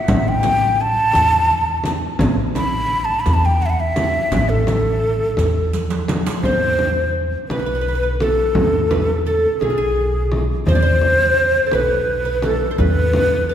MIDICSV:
0, 0, Header, 1, 6, 480
1, 0, Start_track
1, 0, Tempo, 705882
1, 60, Time_signature, 6, 3, 24, 8
1, 9209, End_track
2, 0, Start_track
2, 0, Title_t, "Ney"
2, 0, Program_c, 0, 77
2, 0, Note_on_c, 0, 76, 78
2, 192, Note_on_c, 0, 79, 97
2, 203, Note_off_c, 0, 76, 0
2, 551, Note_on_c, 0, 81, 106
2, 561, Note_off_c, 0, 79, 0
2, 1226, Note_off_c, 0, 81, 0
2, 1743, Note_on_c, 0, 83, 101
2, 2072, Note_on_c, 0, 81, 102
2, 2082, Note_off_c, 0, 83, 0
2, 2175, Note_on_c, 0, 83, 93
2, 2185, Note_off_c, 0, 81, 0
2, 2270, Note_on_c, 0, 81, 94
2, 2280, Note_off_c, 0, 83, 0
2, 2348, Note_on_c, 0, 79, 89
2, 2358, Note_off_c, 0, 81, 0
2, 2461, Note_on_c, 0, 78, 90
2, 2471, Note_off_c, 0, 79, 0
2, 2488, Note_on_c, 0, 76, 72
2, 2498, Note_off_c, 0, 78, 0
2, 2514, Note_on_c, 0, 78, 86
2, 2524, Note_off_c, 0, 76, 0
2, 2584, Note_on_c, 0, 76, 90
2, 2594, Note_off_c, 0, 78, 0
2, 3055, Note_on_c, 0, 69, 90
2, 3065, Note_off_c, 0, 76, 0
2, 4200, Note_off_c, 0, 69, 0
2, 4374, Note_on_c, 0, 72, 102
2, 4828, Note_off_c, 0, 72, 0
2, 5088, Note_on_c, 0, 71, 81
2, 5545, Note_off_c, 0, 71, 0
2, 5574, Note_on_c, 0, 69, 87
2, 6268, Note_off_c, 0, 69, 0
2, 6294, Note_on_c, 0, 69, 78
2, 6528, Note_on_c, 0, 68, 77
2, 6538, Note_off_c, 0, 69, 0
2, 7073, Note_off_c, 0, 68, 0
2, 7256, Note_on_c, 0, 72, 111
2, 7988, Note_on_c, 0, 71, 88
2, 7998, Note_off_c, 0, 72, 0
2, 8470, Note_on_c, 0, 69, 79
2, 8481, Note_off_c, 0, 71, 0
2, 8707, Note_on_c, 0, 71, 97
2, 8717, Note_off_c, 0, 69, 0
2, 9188, Note_on_c, 0, 69, 83
2, 9198, Note_off_c, 0, 71, 0
2, 9209, Note_off_c, 0, 69, 0
2, 9209, End_track
3, 0, Start_track
3, 0, Title_t, "Oud"
3, 0, Program_c, 1, 24
3, 4387, Note_on_c, 1, 72, 75
3, 4834, Note_off_c, 1, 72, 0
3, 5106, Note_on_c, 1, 71, 68
3, 5153, Note_off_c, 1, 71, 0
3, 5163, Note_on_c, 1, 71, 47
3, 5203, Note_off_c, 1, 71, 0
3, 5211, Note_on_c, 1, 71, 58
3, 5257, Note_off_c, 1, 71, 0
3, 5270, Note_on_c, 1, 71, 53
3, 5304, Note_off_c, 1, 71, 0
3, 5312, Note_on_c, 1, 71, 56
3, 5353, Note_off_c, 1, 71, 0
3, 5361, Note_on_c, 1, 71, 49
3, 5399, Note_off_c, 1, 71, 0
3, 5407, Note_on_c, 1, 71, 59
3, 5452, Note_off_c, 1, 71, 0
3, 5460, Note_on_c, 1, 71, 46
3, 5510, Note_off_c, 1, 71, 0
3, 5589, Note_on_c, 1, 69, 65
3, 6035, Note_off_c, 1, 69, 0
3, 6059, Note_on_c, 1, 71, 67
3, 6297, Note_off_c, 1, 71, 0
3, 6300, Note_on_c, 1, 69, 69
3, 6522, Note_off_c, 1, 69, 0
3, 6542, Note_on_c, 1, 68, 65
3, 6584, Note_off_c, 1, 68, 0
3, 6597, Note_on_c, 1, 65, 53
3, 6638, Note_off_c, 1, 65, 0
3, 6648, Note_on_c, 1, 68, 70
3, 7058, Note_off_c, 1, 68, 0
3, 7266, Note_on_c, 1, 72, 76
3, 7309, Note_off_c, 1, 72, 0
3, 7311, Note_on_c, 1, 74, 73
3, 7356, Note_off_c, 1, 74, 0
3, 7360, Note_on_c, 1, 72, 80
3, 7932, Note_on_c, 1, 69, 54
3, 7974, Note_off_c, 1, 72, 0
3, 7976, Note_on_c, 1, 71, 75
3, 7979, Note_off_c, 1, 69, 0
3, 8312, Note_off_c, 1, 71, 0
3, 8330, Note_on_c, 1, 71, 71
3, 8451, Note_off_c, 1, 71, 0
3, 8454, Note_on_c, 1, 69, 71
3, 8640, Note_off_c, 1, 69, 0
3, 8642, Note_on_c, 1, 72, 57
3, 8690, Note_off_c, 1, 72, 0
3, 8693, Note_on_c, 1, 71, 68
3, 9173, Note_off_c, 1, 71, 0
3, 9176, Note_on_c, 1, 69, 68
3, 9209, Note_off_c, 1, 69, 0
3, 9209, End_track
4, 0, Start_track
4, 0, Title_t, "Upright bass"
4, 0, Program_c, 2, 32
4, 58, Note_on_c, 2, 33, 103
4, 666, Note_off_c, 2, 33, 0
4, 783, Note_on_c, 2, 40, 83
4, 1389, Note_off_c, 2, 40, 0
4, 1499, Note_on_c, 2, 33, 101
4, 2106, Note_off_c, 2, 33, 0
4, 2220, Note_on_c, 2, 40, 88
4, 2826, Note_off_c, 2, 40, 0
4, 2936, Note_on_c, 2, 33, 103
4, 3544, Note_off_c, 2, 33, 0
4, 3656, Note_on_c, 2, 40, 89
4, 4264, Note_off_c, 2, 40, 0
4, 4378, Note_on_c, 2, 40, 88
4, 4985, Note_off_c, 2, 40, 0
4, 5097, Note_on_c, 2, 35, 70
4, 5705, Note_off_c, 2, 35, 0
4, 5812, Note_on_c, 2, 40, 91
4, 6423, Note_off_c, 2, 40, 0
4, 6531, Note_on_c, 2, 35, 80
4, 7142, Note_off_c, 2, 35, 0
4, 7255, Note_on_c, 2, 40, 93
4, 7865, Note_off_c, 2, 40, 0
4, 7977, Note_on_c, 2, 35, 75
4, 8587, Note_off_c, 2, 35, 0
4, 8702, Note_on_c, 2, 40, 97
4, 9209, Note_off_c, 2, 40, 0
4, 9209, End_track
5, 0, Start_track
5, 0, Title_t, "Frame drum"
5, 57, Note_on_c, 9, 64, 105
5, 125, Note_off_c, 9, 64, 0
5, 299, Note_on_c, 9, 64, 67
5, 367, Note_off_c, 9, 64, 0
5, 772, Note_on_c, 9, 64, 71
5, 840, Note_off_c, 9, 64, 0
5, 1249, Note_on_c, 9, 64, 69
5, 1317, Note_off_c, 9, 64, 0
5, 1489, Note_on_c, 9, 64, 99
5, 1557, Note_off_c, 9, 64, 0
5, 1736, Note_on_c, 9, 64, 67
5, 1804, Note_off_c, 9, 64, 0
5, 2215, Note_on_c, 9, 64, 62
5, 2283, Note_off_c, 9, 64, 0
5, 2694, Note_on_c, 9, 64, 71
5, 2762, Note_off_c, 9, 64, 0
5, 2936, Note_on_c, 9, 64, 83
5, 3004, Note_off_c, 9, 64, 0
5, 3176, Note_on_c, 9, 64, 75
5, 3244, Note_off_c, 9, 64, 0
5, 3652, Note_on_c, 9, 64, 65
5, 3720, Note_off_c, 9, 64, 0
5, 4137, Note_on_c, 9, 64, 69
5, 4205, Note_off_c, 9, 64, 0
5, 4375, Note_on_c, 9, 64, 78
5, 4443, Note_off_c, 9, 64, 0
5, 4616, Note_on_c, 9, 64, 60
5, 4684, Note_off_c, 9, 64, 0
5, 5100, Note_on_c, 9, 64, 66
5, 5168, Note_off_c, 9, 64, 0
5, 5579, Note_on_c, 9, 64, 73
5, 5647, Note_off_c, 9, 64, 0
5, 5814, Note_on_c, 9, 64, 87
5, 5882, Note_off_c, 9, 64, 0
5, 6057, Note_on_c, 9, 64, 73
5, 6125, Note_off_c, 9, 64, 0
5, 6536, Note_on_c, 9, 64, 58
5, 6604, Note_off_c, 9, 64, 0
5, 7015, Note_on_c, 9, 64, 65
5, 7083, Note_off_c, 9, 64, 0
5, 7253, Note_on_c, 9, 64, 76
5, 7321, Note_off_c, 9, 64, 0
5, 7490, Note_on_c, 9, 64, 58
5, 7558, Note_off_c, 9, 64, 0
5, 7966, Note_on_c, 9, 64, 64
5, 8034, Note_off_c, 9, 64, 0
5, 8449, Note_on_c, 9, 64, 70
5, 8517, Note_off_c, 9, 64, 0
5, 8694, Note_on_c, 9, 64, 78
5, 8762, Note_off_c, 9, 64, 0
5, 8931, Note_on_c, 9, 64, 74
5, 8999, Note_off_c, 9, 64, 0
5, 9209, End_track
6, 0, Start_track
6, 0, Title_t, "Riq"
6, 55, Note_on_c, 9, 54, 60
6, 123, Note_off_c, 9, 54, 0
6, 292, Note_on_c, 9, 54, 54
6, 360, Note_off_c, 9, 54, 0
6, 782, Note_on_c, 9, 54, 51
6, 850, Note_off_c, 9, 54, 0
6, 1021, Note_on_c, 9, 54, 20
6, 1089, Note_off_c, 9, 54, 0
6, 1261, Note_on_c, 9, 54, 54
6, 1329, Note_off_c, 9, 54, 0
6, 1501, Note_on_c, 9, 54, 61
6, 1569, Note_off_c, 9, 54, 0
6, 1740, Note_on_c, 9, 54, 51
6, 1808, Note_off_c, 9, 54, 0
6, 2217, Note_on_c, 9, 54, 52
6, 2285, Note_off_c, 9, 54, 0
6, 2459, Note_on_c, 9, 54, 19
6, 2527, Note_off_c, 9, 54, 0
6, 2695, Note_on_c, 9, 54, 53
6, 2763, Note_off_c, 9, 54, 0
6, 2936, Note_on_c, 9, 54, 66
6, 3004, Note_off_c, 9, 54, 0
6, 3182, Note_on_c, 9, 54, 52
6, 3250, Note_off_c, 9, 54, 0
6, 3663, Note_on_c, 9, 54, 51
6, 3731, Note_off_c, 9, 54, 0
6, 3899, Note_on_c, 9, 54, 61
6, 3967, Note_off_c, 9, 54, 0
6, 4015, Note_on_c, 9, 54, 70
6, 4083, Note_off_c, 9, 54, 0
6, 4141, Note_on_c, 9, 54, 84
6, 4209, Note_off_c, 9, 54, 0
6, 4260, Note_on_c, 9, 54, 94
6, 4328, Note_off_c, 9, 54, 0
6, 9209, End_track
0, 0, End_of_file